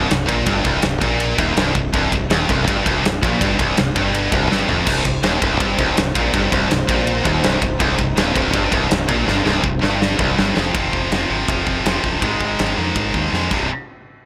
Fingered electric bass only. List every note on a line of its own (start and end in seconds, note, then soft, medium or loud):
0.10 0.28 C1 medium
0.29 0.46 A#1 loud
0.47 0.64 G1 loud
0.65 0.82 C1 loud
0.83 1.01 C1 medium
1.02 1.36 A#1 loud
1.38 1.56 D#1 loud
1.57 1.74 C1 loud
1.75 1.92 C1 medium
1.94 2.11 C1 loud
2.12 2.29 C1 medium
2.30 2.47 D#1 loud
2.49 2.66 C1 loud
2.68 2.85 G1 medium
2.86 3.03 C1 loud
3.04 3.21 C1 medium
3.23 3.40 A#1 medium
3.41 3.58 G1 loud
3.59 3.76 C1 loud
3.78 3.95 C1 medium
3.96 4.30 G1 loud
4.32 4.49 C1 loud
4.51 4.68 G1 loud
4.68 4.86 F1 medium
4.87 5.04 C1 loud
5.06 5.23 C1 medium
5.23 5.41 D#1 medium
5.42 5.59 C1 loud
5.60 5.77 G1 medium
5.79 5.96 C1 loud
5.97 6.14 C1 medium
6.16 6.33 A#1 medium
6.34 6.51 G1 medium
6.52 6.69 C1 loud
6.71 6.88 C1 medium
6.89 7.23 A#1 loud
7.25 7.42 D#1 loud
7.44 7.61 C1 loud
7.62 7.79 C1 medium
7.80 7.97 C1 loud
7.99 8.16 C1 medium
8.17 8.34 D#1 loud
8.36 8.53 C1 loud
8.54 8.71 G1 loud
8.72 8.89 C1 loud
8.91 9.08 C1 medium
9.09 9.26 A#1 loud
9.28 9.45 G1 loud
9.46 9.63 C1 loud
9.64 9.81 C1 medium
9.82 10.17 G1 loud
10.19 10.36 C1 loud
10.38 10.55 G1 medium
10.57 10.74 F1 medium
10.75 10.88 F1 medium
10.93 11.07 F1 medium
11.11 11.25 F1 medium
11.30 11.44 G#1 medium
11.48 11.62 F1 medium
11.67 11.80 F1 medium
11.85 11.99 F1 medium
12.04 12.18 C1 medium
12.22 12.36 G#1 medium
12.41 12.54 G#1 medium
12.60 12.73 G#1 medium
12.78 12.91 F2 medium
12.96 13.10 G#1 medium
13.14 13.28 D#2 medium
13.33 13.47 F2 medium
13.51 13.69 C1 medium